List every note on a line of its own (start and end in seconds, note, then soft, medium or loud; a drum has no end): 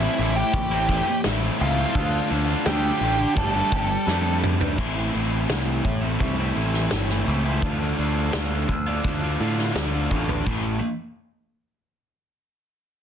0.00 0.54 A2 medium
0.00 0.17 E3 medium
0.00 0.20 A3 loud
0.00 0.20 C4 loud
0.00 0.21 E4 loud
0.00 0.33 E4 medium
0.00 0.39 E5 medium
0.18 0.42 A1 medium
0.18 0.37 E3 medium
0.18 0.37 A3 medium
0.18 0.36 C4 medium
0.18 0.36 E4 medium
0.18 open hi-hat medium
0.36 1.21 G4 medium
0.36 1.20 G5 loud
0.36 muted distorted electric guitar stroke medium
0.54 1.00 A1 loud
0.54 kick loud
0.54 open hi-hat medium
0.71 0.89 A3 medium
0.71 0.89 C4 medium
0.71 0.90 E4 medium
0.88 1.07 E3 medium
0.88 1.08 A3 medium
0.88 1.07 C4 medium
0.88 1.07 E4 medium
0.88 kick medium
0.88 open hi-hat medium
1.08 muted distorted electric guitar stroke medium
1.24 1.49 A1 medium
1.24 1.93 A2 medium
1.24 1.94 E3 loud
1.24 1.81 A3 medium
1.24 1.78 C4 loud
1.24 snare loud
1.28 1.77 E4 loud
1.60 1.84 C#2 loud
1.60 2.28 F4 medium
1.60 2.27 F5 loud
1.60 open hi-hat medium
1.78 1.97 A3 medium
1.78 1.94 C4 medium
1.78 1.93 E4 medium
1.95 2.19 D2 loud
1.95 2.30 D3 loud
1.95 2.31 A3 loud
1.95 2.33 D4 loud
1.95 kick loud
1.95 open hi-hat medium
2.00 2.33 F4 loud
2.31 2.54 D2 medium
2.31 2.65 D3 medium
2.31 2.51 A3 medium
2.31 2.49 D4 medium
2.31 2.47 F4 medium
2.31 open hi-hat medium
2.48 2.66 A3 medium
2.48 2.68 D4 medium
2.48 2.69 F4 medium
2.66 2.90 D2 loud
2.66 3.00 D3 medium
2.66 3.02 A3 loud
2.66 3.03 D4 loud
2.66 3.33 G4 medium
2.66 3.33 G5 loud
2.66 snare loud
2.66 open hi-hat medium
2.70 3.04 F4 loud
3.01 3.24 A1 medium
3.01 3.35 D3 medium
3.01 3.19 A3 medium
3.01 3.18 D4 medium
3.01 open hi-hat medium
3.05 3.18 F4 medium
3.19 muted distorted electric guitar stroke medium
3.36 3.60 G1 loud
3.36 3.71 G3 loud
3.36 3.56 A3 loud
3.36 3.54 D4 loud
3.36 3.52 G4 loud
3.36 4.40 A4 medium
3.36 4.40 A5 loud
3.36 kick loud
3.36 open hi-hat medium
3.53 3.73 D4 medium
3.53 3.74 G4 medium
3.57 3.72 A3 medium
3.72 3.95 G1 medium
3.72 4.05 G3 medium
3.72 3.90 A3 medium
3.72 3.90 D4 medium
3.72 3.89 G4 medium
3.72 kick medium
3.72 open hi-hat medium
3.90 muted distorted electric guitar stroke medium
4.07 4.54 F2 medium
4.07 4.76 G3 loud
4.07 4.62 A3 loud
4.07 4.61 D4 loud
4.07 4.58 G4 loud
4.07 snare medium
4.44 mid tom loud
4.60 4.78 A3 medium
4.60 4.77 D4 medium
4.60 4.76 G4 medium
4.60 floor tom loud
4.77 5.09 A1 loud
4.77 5.31 A2 medium
4.77 5.12 E3 medium
4.77 4.98 A3 medium
4.77 4.96 C4 medium
4.77 4.94 E4 loud
4.77 kick loud
4.77 crash loud
4.95 5.14 A3 medium
4.95 5.15 C4 medium
4.95 5.16 E4 medium
5.13 5.45 A1 medium
5.13 5.49 E3 medium
5.13 5.50 A3 medium
5.13 5.50 C4 medium
5.13 5.51 E4 medium
5.13 open hi-hat medium
5.48 5.80 C2 medium
5.48 6.20 A2 medium
5.48 5.85 E3 loud
5.48 5.86 A3 loud
5.48 5.85 C4 medium
5.48 snare loud
5.48 open hi-hat medium
5.53 5.85 E4 medium
5.85 6.16 A1 medium
5.85 muted distorted electric guitar stroke soft
5.85 kick medium
5.85 open hi-hat medium
6.02 6.41 A3 medium
6.02 6.39 C4 medium
6.02 6.37 E4 medium
6.20 6.51 C2 medium
6.20 kick loud
6.20 open hi-hat medium
6.38 6.57 C4 medium
6.38 6.58 E4 medium
6.42 6.56 A3 medium
6.56 6.87 A1 medium
6.56 6.91 E3 medium
6.56 6.92 A3 medium
6.56 6.93 C4 medium
6.56 6.94 E4 medium
6.56 open hi-hat medium
6.74 snare soft
6.91 7.23 G1 medium
6.91 7.45 A2 loud
6.91 7.24 E3 loud
6.91 7.11 A3 medium
6.91 7.09 C4 medium
6.91 7.07 E4 loud
6.91 snare loud
6.91 open hi-hat medium
7.08 7.26 A3 medium
7.08 7.27 C4 medium
7.08 7.28 E4 medium
7.08 snare soft
7.25 7.58 C#2 medium
7.25 7.60 E3 medium
7.25 7.47 A3 medium
7.25 7.45 C4 medium
7.25 7.43 E4 medium
7.25 open hi-hat medium
7.44 7.63 A3 medium
7.44 7.61 C4 medium
7.44 7.60 E4 medium
7.62 7.93 D2 loud
7.62 7.95 D3 medium
7.62 7.81 A3 medium
7.62 7.79 D4 medium
7.62 7.77 F4 loud
7.62 kick loud
7.62 open hi-hat medium
7.78 7.97 A3 medium
7.78 7.98 D4 medium
7.78 7.98 F4 medium
7.96 8.29 D2 medium
7.96 8.31 D3 medium
7.96 8.32 A3 medium
7.96 8.33 D4 medium
7.96 8.35 F4 medium
7.96 open hi-hat medium
8.32 8.65 D2 loud
8.32 8.68 D3 medium
8.32 8.68 A3 medium
8.32 8.68 D4 loud
8.32 8.68 F4 loud
8.32 snare loud
8.32 open hi-hat medium
8.69 9.00 D2 loud
8.69 muted distorted electric guitar stroke medium
8.69 kick medium
8.69 open hi-hat soft
8.86 9.24 A3 medium
8.86 9.22 D4 medium
8.86 9.20 F4 medium
9.04 9.35 D2 medium
9.04 kick loud
9.04 open hi-hat medium
9.21 9.40 A3 medium
9.21 9.41 D4 medium
9.21 9.42 F4 medium
9.40 9.71 A2 medium
9.40 9.73 D3 medium
9.40 9.75 A3 medium
9.40 9.76 D4 medium
9.40 9.77 F4 medium
9.40 open hi-hat medium
9.59 snare soft
9.74 10.06 D2 medium
9.74 10.09 D3 medium
9.74 9.95 A3 medium
9.74 9.93 D4 loud
9.74 9.91 F4 loud
9.74 snare loud
9.74 open hi-hat medium
9.92 10.10 A3 medium
9.92 10.11 D4 medium
9.92 10.12 F4 medium
10.10 10.42 A1 medium
10.10 10.44 D3 medium
10.10 10.30 A3 medium
10.10 10.28 D4 medium
10.10 10.26 F4 loud
10.10 kick medium
10.28 10.46 A3 medium
10.28 10.45 D4 medium
10.28 10.44 F4 medium
10.28 floor tom medium
10.46 10.80 A1 loud
10.46 10.75 A2 loud
10.46 10.75 E3 medium
10.46 10.76 A3 loud
10.46 kick loud
10.46 crash medium